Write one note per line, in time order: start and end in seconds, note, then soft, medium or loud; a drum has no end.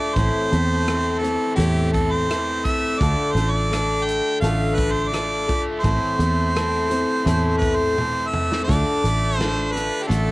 0.00 0.16 D3 medium
0.00 0.51 A3 medium
0.00 0.16 D4 medium
0.00 0.17 D4 soft
0.00 0.17 F4 soft
0.00 0.16 A4 soft
0.00 0.16 D5 medium
0.14 0.30 A1 medium
0.14 0.51 A2 medium
0.14 1.94 A2 medium
0.14 0.52 E3 medium
0.14 0.52 A3 medium
0.14 0.52 C4 medium
0.14 0.51 E4 medium
0.14 0.50 A4 medium
0.14 1.20 C5 medium
0.14 kick loud
0.14 closed hi-hat medium
0.51 1.37 E2 medium
0.51 1.56 A3 medium
0.51 0.85 A3 soft
0.51 0.86 C4 soft
0.51 0.86 E4 soft
0.51 0.87 A4 soft
0.51 closed hi-hat medium
0.86 1.22 A3 medium
0.86 1.22 C4 medium
0.86 1.92 C4 medium
0.86 1.22 E4 medium
0.86 1.20 A4 medium
0.86 cross-stick loud
0.86 closed hi-hat medium
1.18 2.28 E3 medium
1.18 1.55 A4 medium
1.18 1.57 A4 soft
1.23 1.56 A3 soft
1.23 1.56 C4 soft
1.23 1.56 E4 soft
1.23 closed hi-hat medium
1.56 2.71 E2 medium
1.56 2.28 A2 medium
1.56 2.28 E3 medium
1.56 2.64 A3 medium
1.56 2.28 A3 medium
1.56 2.28 C4 medium
1.56 2.29 E4 medium
1.56 1.90 G4 medium
1.56 2.31 A4 medium
1.60 closed hi-hat medium
1.93 3.00 C4 medium
1.93 2.13 A4 medium
1.93 kick medium
1.93 closed hi-hat medium
2.11 2.66 C5 medium
2.28 2.98 E3 medium
2.28 3.01 A3 medium
2.28 3.00 C4 medium
2.28 3.01 E4 medium
2.28 3.02 A4 medium
2.28 cross-stick loud
2.28 closed hi-hat medium
2.65 3.34 A3 medium
2.65 3.01 E5 medium
2.65 kick medium
2.65 closed hi-hat medium
2.99 3.14 D2 medium
2.99 4.04 D3 medium
2.99 3.36 D3 medium
2.99 3.36 A3 medium
2.99 3.36 D4 medium
2.99 3.36 F4 medium
2.99 3.34 A4 medium
2.99 3.34 D5 medium
2.99 kick loud
2.99 closed hi-hat medium
3.33 4.20 A1 medium
3.33 4.42 A3 medium
3.33 3.71 A4 soft
3.33 3.53 C5 medium
3.33 closed hi-hat soft
3.37 3.71 D4 soft
3.37 3.71 F4 medium
3.51 4.07 D5 loud
3.70 4.43 A3 medium
3.70 4.77 D4 medium
3.70 4.43 D4 medium
3.70 4.43 F4 medium
3.70 4.43 A4 medium
3.70 cross-stick loud
3.70 closed hi-hat medium
4.05 5.12 D3 medium
4.05 4.40 G5 loud
4.05 closed hi-hat medium
4.41 5.55 A1 medium
4.41 5.13 D3 medium
4.41 5.49 A3 medium
4.41 5.12 A3 medium
4.41 5.11 D4 medium
4.41 5.12 F4 medium
4.41 5.14 A4 medium
4.41 4.77 F5 medium
4.41 closed hi-hat medium
4.76 5.84 D4 medium
4.76 4.93 B4 medium
4.76 kick medium
4.76 closed hi-hat medium
4.92 5.03 C5 medium
5.03 5.10 C5 medium
5.08 5.48 A3 medium
5.08 5.63 D5 medium
5.13 5.84 D3 medium
5.13 5.48 D4 medium
5.13 5.47 F4 medium
5.13 5.46 A4 medium
5.13 cross-stick medium
5.13 closed hi-hat medium
5.48 6.21 A3 medium
5.48 5.83 D4 soft
5.48 5.83 F4 soft
5.48 5.83 A4 soft
5.48 kick medium
5.48 closed hi-hat medium
5.80 6.19 A2 medium
5.80 6.19 E3 medium
5.80 6.19 A3 medium
5.80 6.19 C4 medium
5.80 6.18 E4 medium
5.80 7.56 C5 loud
5.84 5.98 A1 medium
5.84 7.62 A2 medium
5.84 6.18 A4 medium
5.84 kick medium
5.84 closed hi-hat medium
6.19 7.04 E2 medium
6.19 6.54 A3 soft
6.19 7.28 A3 medium
6.19 6.54 C4 soft
6.19 6.55 E4 soft
6.19 6.55 A4 soft
6.19 closed hi-hat medium
6.55 6.91 A3 medium
6.55 6.90 C4 medium
6.55 7.62 C4 medium
6.55 6.89 E4 medium
6.55 6.88 A4 medium
6.55 cross-stick loud
6.55 closed hi-hat medium
6.89 7.97 E3 medium
6.89 7.26 A3 soft
6.89 7.26 C4 soft
6.89 7.26 E4 soft
6.89 7.26 A4 soft
6.89 closed hi-hat medium
7.25 8.39 E2 medium
7.25 7.97 A2 medium
7.25 7.97 E3 medium
7.25 7.97 A3 medium
7.25 8.34 A3 medium
7.25 7.97 C4 medium
7.25 7.98 E4 medium
7.25 8.00 A4 medium
7.25 closed hi-hat medium
7.58 7.77 B4 medium
7.58 kick medium
7.63 8.69 C4 medium
7.63 closed hi-hat medium
7.76 8.29 C5 loud
7.98 8.68 E3 medium
7.98 8.67 A3 medium
7.98 8.67 C4 medium
7.98 8.67 E4 medium
7.98 8.68 A4 medium
7.98 high tom medium
8.28 8.63 E5 medium
8.34 9.06 A3 medium
8.34 mid tom medium
8.52 snare medium
8.64 9.03 D3 medium
8.64 9.04 A3 medium
8.64 9.03 D4 medium
8.64 9.02 F4 medium
8.64 9.37 D5 medium
8.68 8.83 D2 medium
8.68 9.74 D3 medium
8.68 9.02 A4 medium
8.68 kick loud
8.68 closed hi-hat medium
9.03 9.89 A1 medium
9.03 10.11 A3 medium
9.03 9.37 D4 soft
9.03 9.39 F4 soft
9.03 9.39 A4 medium
9.03 closed hi-hat medium
9.37 9.75 A3 medium
9.37 9.75 D4 medium
9.37 9.74 F4 medium
9.37 9.72 A4 medium
9.37 9.73 C5 medium
9.37 snare loud
9.37 closed hi-hat medium
9.41 10.31 D4 medium
9.72 10.31 D3 medium
9.72 10.08 F4 soft
9.72 10.08 A4 soft
9.72 10.04 B4 medium
9.76 10.08 D4 soft
9.76 closed hi-hat medium
10.03 10.09 G4 medium
10.07 10.31 A1 medium
10.07 10.31 D3 medium
10.07 10.31 A3 medium
10.07 10.31 D4 medium
10.07 10.31 F4 medium
10.07 10.31 A4 medium
10.07 closed hi-hat medium
10.11 10.31 A3 medium